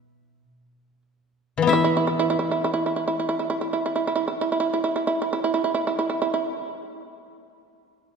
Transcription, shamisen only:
Already playing: E4
1.73 E4
1.84 E4
1.97 E4
2.07 E4
2.19 E4
2.30 E4
2.39 E4
2.51 E4
2.64 E4
2.74 E4
2.86 E4
2.96 E4
3.08 E4
3.20 E4
3.29 E4
3.39 E4
3.50 E4
3.61 E4
3.73 E4
3.86 E4
3.96 E4
4.07 E4
4.16 E4
4.28 E4
4.41 E4
4.52 E4
4.60 E4
4.73 E4
4.84 E4
4.96 E4
5.07 E4
5.22 E4
5.33 E4
5.44 E4
5.54 E4
5.64 E4
5.74 E4
5.87 E4
5.99 E4
6.10 E4
6.22 E4
6.34 E4

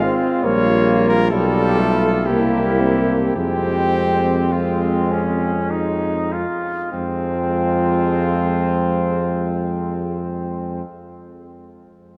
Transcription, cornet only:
Already playing: F5
0.43 C#5
1.08 A#4
1.30 A4
2.26 G4
3.36 G4
4.51 F4
6.94 F4

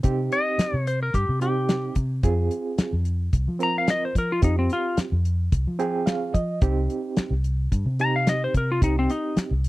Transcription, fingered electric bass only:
0.04 C3
0.58 muted fingered electric bass stroke
0.74 C3
1.14 G2
1.29 C3
1.96 C3
2.23 F2
2.78 muted fingered electric bass stroke
2.93 F2
3.33 C2
3.48 F3
4.15 F3
4.43 F2
4.97 muted fingered electric bass stroke
5.12 F2
5.52 C2
5.67 F3
6.34 F3
6.62 C2
7.18 muted fingered electric bass stroke
7.31 C2
7.72 G2
7.86 C3
8.54 C3
8.82 C2
9.36 muted fingered electric bass stroke
9.51 C2

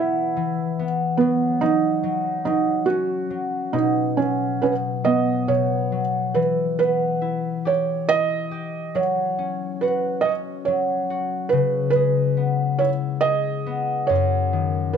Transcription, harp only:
Already playing: E3 B3
0.37 E3
0.79 B3
1.21 F#3
1.62 F#3
2.03 F#3
2.45 F#3
2.88 C#4
3.30 F#3
3.73 B2
4.19 F#3
4.63 B2
5.04 F#3
5.48 B2
5.92 F#3
6.35 E3
6.79 B3
7.22 E4
7.65 G4
8.09 E4
8.51 G4
8.95 F#3
9.39 C#4
9.83 F#4
10.25 C#4
10.68 F#3
11.10 F#4
11.52 C#3
11.95 G#3
12.37 B3
12.80 E4
13.23 G#4
13.66 B3
14.09 F#2
14.53 D#3

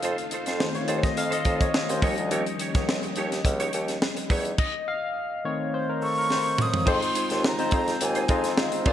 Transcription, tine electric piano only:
Already playing: A4 F5
0.59 D#3 A3 C4 C5
0.75 C#5
1.04 D#5
1.18 F5
1.33 D#5
1.62 C#5
1.90 C5
2.02 F3 G3 C#4 D#5
4.59 D#5
4.88 F5
5.44 D#3 A3 C4 C#5
5.74 C5
5.89 A#4
6.02 A4
6.18 A#4
6.32 C5
6.86 G#3 C4 D#4 F4 C5
7.59 G#3 C4 D#4 F4 C5
8.29 G#3 C4 D#4 F4 D#5
8.86 A#3 C#4 F4 G#4 C5

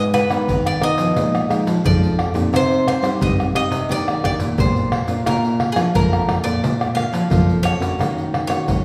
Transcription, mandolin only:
0.14 B4
0.67 D5
0.83 D#5
1.86 D5
2.56 C5
2.88 C5
3.22 D#5
3.56 D#5
3.92 D5
4.25 D5
4.60 C5
5.27 A#4
5.72 G#4
5.95 A#4
6.44 D5
6.95 F5
7.63 C#5
8.47 C#5

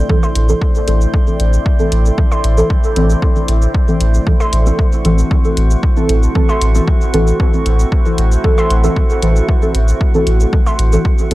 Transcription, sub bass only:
0.36 A1
0.88 A1
1.40 A1
1.92 A1
2.44 A1
2.96 A1
3.48 A1
4.01 A1
4.53 A1
5.05 A1
5.57 A1
6.09 A1
6.61 A1
7.14 A1
7.66 A1
8.18 A1
8.70 A1
9.23 A1
9.75 A1
10.27 A1
10.79 A1

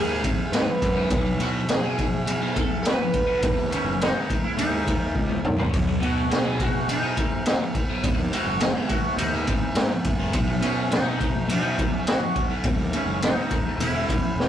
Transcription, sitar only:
Already playing: G#4
0.52 B4
1.41 F#4
1.69 G#4
2.54 A4
2.82 B4
3.73 C#4
4.02 D#4
4.44 E4
4.57 D#4
6.02 F#4
6.31 G#4
6.62 F#4
6.90 D#4
8.34 F#4
8.60 G#4
8.88 F#4
9.16 D#4
10.61 C#4
10.92 D#4
11.52 D#4
11.96 C#4
12.09 F#4
12.93 C#4
13.23 D#4
13.81 E4

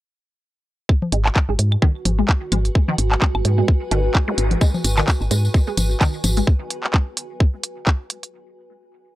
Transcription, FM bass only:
1.12 G#1
1.49 G#1
1.59 G#2
2.05 G#1
2.52 G#1
2.98 G#1
3.35 G#1
3.45 G#2
3.91 G#1
4.38 G#1
4.84 G#1
5.21 G#1
5.31 G#2
5.77 G#1
6.24 G#1

